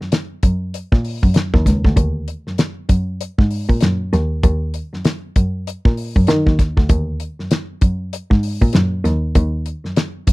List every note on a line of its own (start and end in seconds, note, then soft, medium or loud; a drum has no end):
0.01 0.10 F#2 soft
0.01 snare soft
0.12 snare loud
0.12 closed hi-hat medium
0.43 0.70 F#2 medium
0.43 kick loud
0.43 closed hi-hat medium
0.74 closed hi-hat medium
0.92 1.03 A#2 medium
0.92 kick medium
0.92 snare soft
1.05 open hi-hat medium
1.23 1.34 F#2 medium
1.23 kick medium
1.34 snare loud
1.34 closed hi-hat medium
1.54 1.65 D#2 medium
1.54 kick loud
1.54 snare soft
1.66 1.82 C#2 medium
1.66 kick medium
1.66 snare soft
1.66 closed hi-hat medium
1.85 1.96 D2 medium
1.85 kick medium
1.85 snare soft
1.96 2.23 D#2 medium
1.96 kick loud
1.96 closed hi-hat medium
2.28 closed hi-hat medium
2.47 2.56 F#2 soft
2.47 snare soft
2.58 snare loud
2.58 closed hi-hat medium
2.89 3.16 F#2 medium
2.89 kick loud
2.89 closed hi-hat medium
3.21 closed hi-hat medium
3.39 3.49 G#2 medium
3.39 kick loud
3.39 snare soft
3.51 open hi-hat medium
3.69 3.80 A#2 medium
3.69 kick medium
3.81 4.09 F#2 loud
3.81 snare loud
3.81 closed hi-hat medium
4.13 4.29 D#2 medium
4.13 snare soft
4.13 closed hi-hat medium
4.43 4.70 D#2 medium
4.43 kick loud
4.43 closed hi-hat medium
4.74 closed hi-hat medium
4.93 5.02 F#2 soft
4.93 snare soft
5.05 snare loud
5.05 closed hi-hat medium
5.36 5.63 F#2 medium
5.36 kick medium
5.36 closed hi-hat medium
5.67 closed hi-hat medium
5.85 5.96 A#2 medium
5.85 kick loud
5.85 snare soft
5.97 open hi-hat medium
6.16 6.26 F#2 loud
6.16 kick medium
6.27 6.44 D#3 loud
6.27 snare loud
6.27 closed hi-hat medium
6.47 6.57 D#2 medium
6.47 kick medium
6.47 snare soft
6.59 kick medium
6.59 snare soft
6.59 closed hi-hat medium
6.77 6.88 D2 medium
6.77 kick medium
6.77 snare soft
6.89 7.16 D#2 loud
6.89 kick loud
6.89 closed hi-hat medium
7.20 closed hi-hat medium
7.39 7.48 F#2 soft
7.39 snare soft
7.51 snare loud
7.51 closed hi-hat medium
7.81 8.08 F#2 medium
7.81 kick loud
7.81 closed hi-hat medium
8.13 closed hi-hat medium
8.31 8.41 G#2 medium
8.31 kick medium
8.31 snare soft
8.43 open hi-hat medium
8.62 8.72 A#2 medium
8.62 kick medium
8.73 9.00 F#2 loud
8.73 snare loud
8.73 closed hi-hat medium
9.05 9.20 D#2 medium
9.05 snare soft
9.05 closed hi-hat medium
9.35 9.62 D#2 loud
9.35 kick loud
9.35 closed hi-hat medium
9.66 closed hi-hat medium
9.84 9.94 F#2 soft
9.84 snare soft
9.96 snare loud
9.96 closed hi-hat medium
10.27 10.33 F#2 medium
10.27 kick loud
10.27 closed hi-hat medium